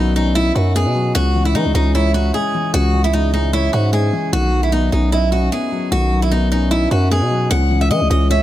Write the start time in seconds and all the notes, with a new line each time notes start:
Already playing: B1 D#3 F#3 B3 C#4 D#4
0.16 C#4 D#4
0.35 D#4 E4
0.55 F#2 C#4 F#4
0.75 B3 G#4
0.86 B2
0.95 F#3
1.15 C#2 C#3 F#4
1.35 E3
1.45 E4
1.55 E3 G#3 D#4
1.65 C#2
1.75 C#2 C#4 D#4
1.95 E4 C#5
2.14 C#4 F#4
2.33 G#3 G#4
2.54 E3
2.74 C#2 C#3 F#4
2.93 E3
3.04 E4
3.13 G#3 D#4
3.33 C#4 D#4
3.53 E4 C#5
3.73 G#2 C#4 F#4
3.93 G#3 G#4
4.13 E3
4.33 B1 D#3 F#4
4.53 F#3
4.63 E4
4.72 B3 D#4
4.92 B1 C#4 D#4
5.12 D#4 E4
5.32 C#4 F#4
5.52 B3 G#4
5.72 F#3
5.92 B1 D#3 F#4
6.12 F#3
6.22 E4
6.31 B3 D#4
6.52 C#4 D#4
6.71 D#4 E4
6.91 F#2 C#4 F#4
7.11 B3 G#4
7.22 B2
7.31 F#3
7.51 C#2 C#3 F#5
7.71 E3
7.81 E5
7.91 E3 G#3 D#5
8.01 C#2
8.10 C#2 C#4 D#5
8.31 C#5 E5